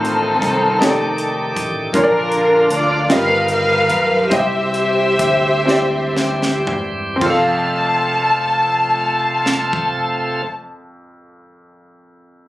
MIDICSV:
0, 0, Header, 1, 6, 480
1, 0, Start_track
1, 0, Key_signature, -1, "major"
1, 0, Tempo, 765306
1, 1215, Time_signature, 6, 3, 24, 8
1, 2190, Tempo, 825309
1, 2670, Tempo, 879765
1, 3150, Tempo, 953895
1, 3630, Tempo, 1058201
1, 4110, Tempo, 1119403
1, 6371, End_track
2, 0, Start_track
2, 0, Title_t, "String section"
2, 0, Program_c, 0, 48
2, 0, Note_on_c, 0, 60, 60
2, 0, Note_on_c, 0, 63, 58
2, 0, Note_on_c, 0, 69, 86
2, 964, Note_off_c, 0, 60, 0
2, 964, Note_off_c, 0, 63, 0
2, 964, Note_off_c, 0, 69, 0
2, 1231, Note_on_c, 0, 70, 79
2, 1237, Note_on_c, 0, 65, 57
2, 1238, Note_on_c, 0, 62, 61
2, 1678, Note_off_c, 0, 70, 0
2, 1712, Note_on_c, 0, 74, 76
2, 1926, Note_off_c, 0, 62, 0
2, 1926, Note_off_c, 0, 65, 0
2, 1948, Note_off_c, 0, 74, 0
2, 1958, Note_on_c, 0, 77, 94
2, 1962, Note_on_c, 0, 70, 72
2, 1962, Note_on_c, 0, 71, 70
2, 2181, Note_off_c, 0, 77, 0
2, 2200, Note_off_c, 0, 71, 0
2, 2202, Note_off_c, 0, 70, 0
2, 2203, Note_on_c, 0, 77, 99
2, 2207, Note_on_c, 0, 71, 68
2, 2209, Note_on_c, 0, 70, 73
2, 2653, Note_off_c, 0, 77, 0
2, 2655, Note_off_c, 0, 71, 0
2, 2656, Note_off_c, 0, 70, 0
2, 2680, Note_on_c, 0, 67, 61
2, 2682, Note_on_c, 0, 76, 83
2, 2684, Note_on_c, 0, 72, 63
2, 3850, Note_off_c, 0, 67, 0
2, 3851, Note_off_c, 0, 72, 0
2, 3869, Note_off_c, 0, 76, 0
2, 4121, Note_on_c, 0, 81, 74
2, 5496, Note_off_c, 0, 81, 0
2, 6371, End_track
3, 0, Start_track
3, 0, Title_t, "Grand piano"
3, 0, Program_c, 1, 0
3, 0, Control_c, 1, 64, 127
3, 0, Note_on_c, 1, 45, 58
3, 0, Note_on_c, 1, 57, 70
3, 0, Note_on_c, 1, 63, 57
3, 0, Note_on_c, 1, 65, 67
3, 0, Note_on_c, 1, 72, 80
3, 341, Note_off_c, 1, 57, 0
3, 344, Note_off_c, 1, 63, 0
3, 347, Note_off_c, 1, 65, 0
3, 372, Note_off_c, 1, 72, 0
3, 477, Note_off_c, 1, 45, 0
3, 496, Note_on_c, 1, 57, 66
3, 501, Note_on_c, 1, 63, 62
3, 509, Note_on_c, 1, 67, 64
3, 513, Control_c, 1, 64, 0
3, 516, Note_on_c, 1, 73, 60
3, 551, Note_off_c, 1, 73, 0
3, 559, Note_on_c, 1, 74, 71
3, 622, Control_c, 1, 64, 127
3, 1054, Note_off_c, 1, 57, 0
3, 1057, Note_off_c, 1, 63, 0
3, 1061, Note_off_c, 1, 67, 0
3, 1086, Note_off_c, 1, 74, 0
3, 1212, Note_on_c, 1, 58, 63
3, 1218, Note_on_c, 1, 62, 59
3, 1222, Note_on_c, 1, 46, 51
3, 1224, Control_c, 1, 64, 0
3, 1226, Note_on_c, 1, 65, 59
3, 1229, Note_on_c, 1, 73, 58
3, 1263, Note_off_c, 1, 73, 0
3, 1276, Note_on_c, 1, 74, 73
3, 1351, Control_c, 1, 64, 127
3, 1776, Note_off_c, 1, 58, 0
3, 1779, Note_off_c, 1, 62, 0
3, 1783, Note_off_c, 1, 65, 0
3, 1808, Note_off_c, 1, 74, 0
3, 1918, Note_off_c, 1, 46, 0
3, 1935, Note_on_c, 1, 59, 58
3, 1943, Note_on_c, 1, 65, 55
3, 1947, Note_on_c, 1, 43, 53
3, 1948, Control_c, 1, 64, 0
3, 1953, Note_on_c, 1, 67, 55
3, 1957, Note_on_c, 1, 75, 62
3, 2045, Control_c, 1, 64, 127
3, 2505, Note_off_c, 1, 59, 0
3, 2509, Note_off_c, 1, 65, 0
3, 2513, Note_off_c, 1, 67, 0
3, 2516, Note_off_c, 1, 75, 0
3, 2649, Note_off_c, 1, 43, 0
3, 2660, Note_on_c, 1, 60, 70
3, 2662, Note_on_c, 1, 64, 60
3, 2664, Note_on_c, 1, 48, 54
3, 2673, Note_on_c, 1, 67, 58
3, 2677, Control_c, 1, 64, 0
3, 2677, Note_on_c, 1, 75, 55
3, 2710, Note_on_c, 1, 76, 75
3, 2713, Note_off_c, 1, 75, 0
3, 2786, Control_c, 1, 64, 127
3, 3224, Note_off_c, 1, 60, 0
3, 3225, Note_off_c, 1, 64, 0
3, 3230, Note_off_c, 1, 67, 0
3, 3247, Note_off_c, 1, 76, 0
3, 3362, Note_off_c, 1, 48, 0
3, 3381, Note_on_c, 1, 60, 65
3, 3386, Note_on_c, 1, 64, 55
3, 3395, Note_on_c, 1, 67, 57
3, 3403, Note_on_c, 1, 74, 58
3, 3434, Note_on_c, 1, 76, 69
3, 3435, Note_off_c, 1, 74, 0
3, 3944, Note_off_c, 1, 60, 0
3, 3946, Note_off_c, 1, 64, 0
3, 3950, Note_off_c, 1, 67, 0
3, 3968, Note_off_c, 1, 76, 0
3, 4088, Note_on_c, 1, 60, 64
3, 4113, Note_on_c, 1, 65, 59
3, 4115, Control_c, 1, 64, 0
3, 4121, Note_on_c, 1, 41, 62
3, 4129, Note_on_c, 1, 69, 61
3, 4148, Note_on_c, 1, 77, 77
3, 4200, Control_c, 1, 64, 127
3, 5464, Note_off_c, 1, 60, 0
3, 5488, Note_off_c, 1, 65, 0
3, 5496, Note_off_c, 1, 41, 0
3, 5504, Note_off_c, 1, 69, 0
3, 5523, Note_off_c, 1, 77, 0
3, 6371, End_track
4, 0, Start_track
4, 0, Title_t, "Tonewheel organ"
4, 0, Program_c, 2, 16
4, 0, Note_on_c, 2, 51, 61
4, 0, Note_on_c, 2, 57, 54
4, 0, Note_on_c, 2, 60, 49
4, 0, Note_on_c, 2, 65, 65
4, 491, Note_off_c, 2, 51, 0
4, 495, Note_off_c, 2, 57, 0
4, 498, Note_on_c, 2, 51, 68
4, 499, Note_off_c, 2, 65, 0
4, 500, Note_off_c, 2, 60, 0
4, 501, Note_on_c, 2, 67, 73
4, 502, Note_on_c, 2, 57, 62
4, 503, Note_on_c, 2, 74, 57
4, 1213, Note_off_c, 2, 51, 0
4, 1214, Note_off_c, 2, 67, 0
4, 1215, Note_off_c, 2, 57, 0
4, 1215, Note_off_c, 2, 74, 0
4, 1220, Note_on_c, 2, 50, 60
4, 1220, Note_on_c, 2, 65, 61
4, 1221, Note_on_c, 2, 53, 52
4, 1223, Note_on_c, 2, 58, 54
4, 1933, Note_off_c, 2, 65, 0
4, 1936, Note_off_c, 2, 58, 0
4, 1940, Note_on_c, 2, 65, 65
4, 1941, Note_on_c, 2, 55, 53
4, 1942, Note_off_c, 2, 50, 0
4, 1942, Note_on_c, 2, 51, 58
4, 1943, Note_off_c, 2, 53, 0
4, 1943, Note_on_c, 2, 58, 45
4, 1981, Note_on_c, 2, 59, 48
4, 1984, Note_off_c, 2, 58, 0
4, 2666, Note_off_c, 2, 51, 0
4, 2667, Note_off_c, 2, 55, 0
4, 2669, Note_off_c, 2, 65, 0
4, 2672, Note_on_c, 2, 60, 52
4, 2672, Note_on_c, 2, 67, 60
4, 2673, Note_on_c, 2, 51, 41
4, 2674, Note_on_c, 2, 55, 50
4, 2687, Note_off_c, 2, 59, 0
4, 2709, Note_on_c, 2, 52, 55
4, 2711, Note_off_c, 2, 51, 0
4, 4093, Note_off_c, 2, 60, 0
4, 4093, Note_off_c, 2, 67, 0
4, 4094, Note_off_c, 2, 55, 0
4, 4109, Note_off_c, 2, 52, 0
4, 4111, Note_on_c, 2, 69, 76
4, 4112, Note_on_c, 2, 53, 66
4, 4112, Note_on_c, 2, 60, 60
4, 4114, Note_on_c, 2, 57, 62
4, 5486, Note_off_c, 2, 60, 0
4, 5486, Note_off_c, 2, 69, 0
4, 5487, Note_off_c, 2, 53, 0
4, 5488, Note_off_c, 2, 57, 0
4, 6371, End_track
5, 0, Start_track
5, 0, Title_t, "Fingered electric bass"
5, 0, Program_c, 3, 33
5, 0, Note_on_c, 3, 33, 81
5, 241, Note_off_c, 3, 33, 0
5, 263, Note_on_c, 3, 36, 72
5, 483, Note_off_c, 3, 36, 0
5, 496, Note_on_c, 3, 29, 78
5, 949, Note_off_c, 3, 29, 0
5, 979, Note_on_c, 3, 33, 76
5, 1197, Note_off_c, 3, 33, 0
5, 1215, Note_on_c, 3, 34, 85
5, 1670, Note_off_c, 3, 34, 0
5, 1696, Note_on_c, 3, 38, 69
5, 1933, Note_on_c, 3, 31, 78
5, 1942, Note_off_c, 3, 38, 0
5, 2430, Note_off_c, 3, 31, 0
5, 2430, Note_on_c, 3, 35, 70
5, 2652, Note_off_c, 3, 35, 0
5, 2669, Note_on_c, 3, 36, 85
5, 3128, Note_off_c, 3, 36, 0
5, 3147, Note_on_c, 3, 38, 59
5, 3844, Note_off_c, 3, 38, 0
5, 3863, Note_on_c, 3, 28, 74
5, 4092, Note_off_c, 3, 28, 0
5, 4112, Note_on_c, 3, 29, 83
5, 5487, Note_off_c, 3, 29, 0
5, 6371, End_track
6, 0, Start_track
6, 0, Title_t, "Drums"
6, 30, Note_on_c, 9, 42, 48
6, 92, Note_off_c, 9, 42, 0
6, 264, Note_on_c, 9, 36, 75
6, 269, Note_on_c, 9, 42, 72
6, 327, Note_off_c, 9, 36, 0
6, 332, Note_off_c, 9, 42, 0
6, 513, Note_on_c, 9, 38, 92
6, 514, Note_on_c, 9, 42, 73
6, 576, Note_off_c, 9, 38, 0
6, 577, Note_off_c, 9, 42, 0
6, 742, Note_on_c, 9, 42, 48
6, 805, Note_off_c, 9, 42, 0
6, 982, Note_on_c, 9, 36, 63
6, 982, Note_on_c, 9, 42, 62
6, 1044, Note_off_c, 9, 36, 0
6, 1045, Note_off_c, 9, 42, 0
6, 1216, Note_on_c, 9, 36, 97
6, 1216, Note_on_c, 9, 42, 66
6, 1279, Note_off_c, 9, 36, 0
6, 1279, Note_off_c, 9, 42, 0
6, 1453, Note_on_c, 9, 42, 44
6, 1516, Note_off_c, 9, 42, 0
6, 1696, Note_on_c, 9, 42, 68
6, 1759, Note_off_c, 9, 42, 0
6, 1943, Note_on_c, 9, 38, 88
6, 1944, Note_on_c, 9, 42, 68
6, 2006, Note_off_c, 9, 38, 0
6, 2006, Note_off_c, 9, 42, 0
6, 2185, Note_on_c, 9, 42, 47
6, 2244, Note_off_c, 9, 42, 0
6, 2425, Note_on_c, 9, 42, 58
6, 2430, Note_on_c, 9, 36, 62
6, 2483, Note_off_c, 9, 42, 0
6, 2488, Note_off_c, 9, 36, 0
6, 2667, Note_on_c, 9, 42, 64
6, 2670, Note_on_c, 9, 36, 99
6, 2722, Note_off_c, 9, 42, 0
6, 2725, Note_off_c, 9, 36, 0
6, 2901, Note_on_c, 9, 42, 42
6, 2955, Note_off_c, 9, 42, 0
6, 3147, Note_on_c, 9, 42, 70
6, 3148, Note_on_c, 9, 36, 74
6, 3198, Note_off_c, 9, 42, 0
6, 3199, Note_off_c, 9, 36, 0
6, 3394, Note_on_c, 9, 38, 45
6, 3444, Note_off_c, 9, 38, 0
6, 3637, Note_on_c, 9, 38, 57
6, 3682, Note_off_c, 9, 38, 0
6, 3754, Note_on_c, 9, 38, 50
6, 3799, Note_off_c, 9, 38, 0
6, 3866, Note_on_c, 9, 43, 81
6, 3912, Note_off_c, 9, 43, 0
6, 4112, Note_on_c, 9, 36, 82
6, 4112, Note_on_c, 9, 49, 67
6, 4155, Note_off_c, 9, 36, 0
6, 4155, Note_off_c, 9, 49, 0
6, 5075, Note_on_c, 9, 38, 44
6, 5118, Note_off_c, 9, 38, 0
6, 5191, Note_on_c, 9, 36, 56
6, 5234, Note_off_c, 9, 36, 0
6, 6371, End_track
0, 0, End_of_file